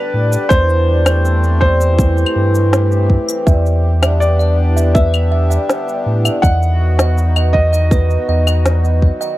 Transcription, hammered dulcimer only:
Already playing: D3 G3 B3 D4
0.14 G3
0.32 D3
0.51 E3
0.88 G3
1.06 A3
1.25 C4
1.43 A3
1.62 G3
1.80 E3
1.99 E3
2.36 E3
2.54 A3
2.72 E3
2.91 G4
3.10 C4
3.28 E3
3.47 D3
3.84 G4
4.02 G3
4.21 B3
4.39 G3
4.58 E3
4.76 D3
4.95 D3
5.32 G4
5.50 G3
5.69 B3
5.87 G3
6.06 E3
6.24 D3
6.43 D#3
6.80 D#5
6.99 B3
7.17 D#4
7.36 B3
7.55 F#3
7.73 D#3
7.92 D#3
8.29 D#5
8.47 B3
8.65 D#4
8.84 B3
9.03 F#3
9.21 D#3

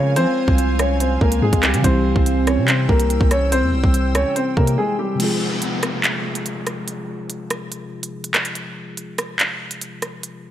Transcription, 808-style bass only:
Already playing: C#3
0.16 F3
0.48 C2
1.21 C#2
1.42 G#2
1.53 C#2
1.74 C#3
1.84 C2
2.16 C2
2.58 C3
2.89 C2
3.21 C2
3.63 E2
3.73 C2
3.84 C2
4.15 C#2
4.57 C3

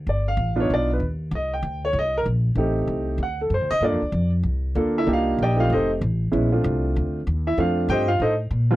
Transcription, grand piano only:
0.09 D5
0.28 F5
0.56 B3 D4 D#4 F4
0.60 C#5
0.74 D5
0.93 B4
1.35 D#5
1.54 G5
1.85 C#5
1.99 D#5
2.17 A#4
2.57 A3 C4 D#4 G4
3.23 F#5
3.41 A4
3.54 C5
3.71 D#5
3.82 A#3 D4 F4 A4 D5
4.75 A#3 D4 F4 A4
4.98 E4 E5
5.06 A#3 D4 D#4 G4
5.13 F4 F5
5.42 G4 D5 D#5 G5
5.56 A3 C4 D#4 F4 G4 F5
5.72 D#4 A4 C5 D#5
6.32 G#3 B3 C#4 E4
6.52 A3 C4 D4 F4
7.47 E4 E5
7.58 A3 C4 D4 F4 F5
7.90 G4 C5 D#5 G5
8.08 F4 F5
8.22 D#4 A4 C5 D#5
8.71 D#2 G3 A#3 C4 F4

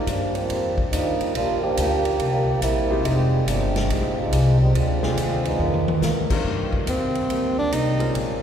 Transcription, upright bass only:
0.06 G2
0.49 F2
0.92 D#2
1.20 muted upright bass stroke
1.34 A#1
1.77 D2
2.19 C2
2.61 A#1
3.03 F1
3.46 G1
3.88 A#1
4.31 C2
4.74 D2
5.16 D#2
5.59 F2
6.01 G#2
6.44 G2
6.86 D#2
7.29 D2
7.71 C2
8.14 A#1

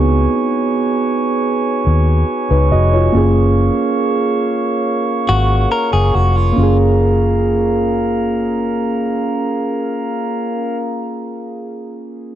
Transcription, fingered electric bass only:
Already playing: C#2
1.87 D#2
2.51 C#2
2.72 F1
3.15 F#1
5.29 G#1
5.93 F#1
6.15 F1
6.58 F#1

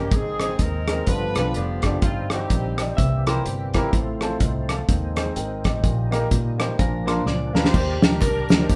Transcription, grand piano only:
0.13 G#2
0.41 C4 D#4 G#4 C5
0.88 C4 D#4 G#4 A#4
1.08 G2
1.36 D4 F4 G4 B4
1.83 D4 F4 G4 D5
2.04 G2
2.32 C4 D#4 G4 C5
2.79 C4 D#4 G4 D5
2.98 C3
3.27 C4 E4 G4 A#4
3.74 C4 E4 G4 A#4
3.94 A2
4.22 C4 F4 A4 C5
4.42 D#4
4.69 A4 F5
5.15 C4 D#4 G#4 C5
5.36 A#4 G5
5.65 G4 D#5
5.83 A#2
6.11 A#3 D#4 G4 A#4
6.58 A#3 D#4 G4 C5
6.79 A#2
7.06 A#3 D4 F4 A#4
7.53 A#3 D4 F4 A#4
7.74 D#3
8.02 D4 D#4 G4 A#4
8.50 D4 D#4 G4 A#4
8.59 D4 D#4 G4 C5
8.69 D#3

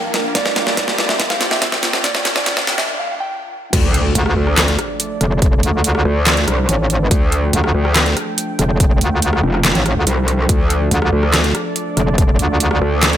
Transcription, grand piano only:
0.35 D5
0.67 D5
1.09 E5
1.30 F5
1.51 E5
2.04 D5
2.36 D5
2.78 E5
2.99 F5
3.20 G5

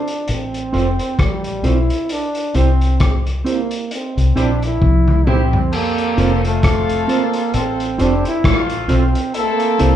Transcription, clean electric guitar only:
0.72 C4 F4 A4 C5
1.63 C4 F4 A4 C5
2.54 C4 E4 G4 C5
3.44 C4 E4 G4 C5
4.36 C4 E4 G4 C5
5.27 C4 E4 G4 C5
6.17 C4 F4 A4 C5
7.08 C4 F4 A4 C5
7.98 C4 F4 A4 C5
8.88 C4 F4 A4 C5
9.79 C4 E4 G4 C5

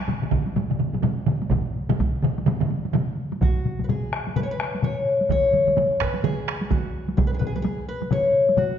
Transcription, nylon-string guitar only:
3.42 F#4
3.84 B4
3.89 G#4
4.36 B4
4.43 C#5
4.51 B4
4.84 C#5
5.32 C#5
6.01 B4
6.24 G#4
6.71 F#4
7.17 G#4
7.27 B4
7.34 G#4
7.39 B4
7.47 G#4
7.56 B4
7.62 G#4
7.88 B4
8.13 C#5
8.58 F#4

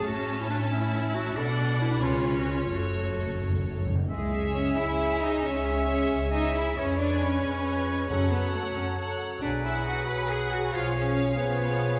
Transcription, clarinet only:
0.07 F#4
0.41 E4
0.49 D4
0.71 C#4
1.14 F#4
1.37 A4
1.81 E4
2.03 F4
2.39 F#4
2.50 F4
2.75 F#4
4.10 G#4
4.54 C#5
4.77 E5
5.22 D#5
5.44 C#5
5.88 C#5
6.31 D#5
6.54 E5
6.76 C#5
6.98 D5
7.20 C#5
8.10 C#5
8.32 B4
8.54 A4
8.77 C#5
9.43 D5
9.66 E5
9.88 F#5
10.07 B5
10.29 G#5
10.50 F#5
10.73 F5
10.94 C#5
11.37 B4

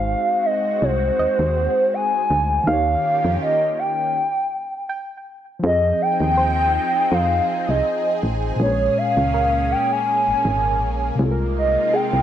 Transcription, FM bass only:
Already playing: G#1
0.82 C2
1.19 D#2
1.39 D#2
2.30 D2
2.68 D#2
3.25 F2
5.64 F2
6.20 D#2
7.12 F2
7.69 C2
8.23 A1
8.60 A#1
9.17 C#2
10.28 G#1
10.45 G#1
10.82 A#1
11.19 C2
12.13 C2

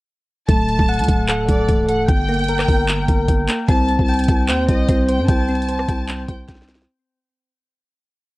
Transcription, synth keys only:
0.48 A3
0.89 F#5
1.29 A4
1.69 A3
1.89 A4
2.08 G5
2.29 A#3
2.49 A#4
2.68 G5
3.09 A#4
3.28 G5
3.48 A#3
3.68 C4
4.09 G5
4.49 C5
4.89 C4
5.09 C5
5.29 G5
5.48 C4
5.68 C5
5.88 G5
6.28 C5
6.48 G5
6.69 C4

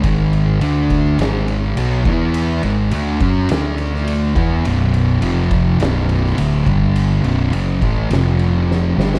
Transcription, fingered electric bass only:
0.03 G#1
0.62 D2
1.18 G#1
1.77 B1
2.05 E2
2.64 G#1
2.91 D2
3.20 F#2
3.50 D2
4.36 E2
4.65 B0
5.22 F1
5.80 B0
6.38 D1
6.66 G1
7.24 B0
7.53 F#1
7.81 A1
8.11 F1
8.97 G1

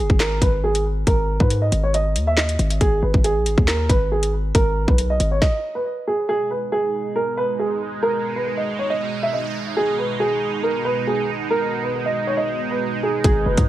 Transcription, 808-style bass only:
0.10 G#1
0.42 G#1
1.07 G#1
1.40 G#2
1.72 G#1
2.16 D#2
2.59 G#1
2.81 G#1
3.03 G#1
3.14 G#1
3.36 A#1
3.46 G#1
3.58 D#2
3.89 G#1
4.55 G#1
4.88 B1
5.20 G#1
13.24 G#1
13.46 F#1
13.58 G#2

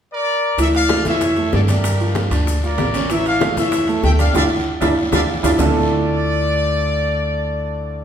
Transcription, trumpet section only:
0.13 A#4 D5
0.61 A4 E5
0.75 D5 F5
1.08 C#5 E5
1.54 A4 D5
1.69 G4 A#4
2.65 A#4 D5
3.12 C#5 E5
3.28 D5 F5
3.59 C#5 E5
4.05 E5 G5
4.21 D5 F5
4.36 D5 E5 F5
4.80 D5 E5 F5
5.13 D5 E5 F5
5.43 D5 E5 F5
5.60 D5

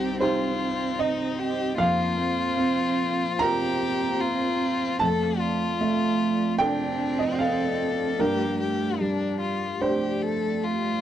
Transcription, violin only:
Already playing: G4
0.21 F4
0.99 D#4
1.39 G4
1.77 F4
3.41 G4
4.20 F4
5.01 A4
5.39 F4
6.60 D4
7.39 A4
8.20 G4
8.59 G4
9.00 D4
9.39 F4
9.81 G4
10.22 A4
10.63 F4

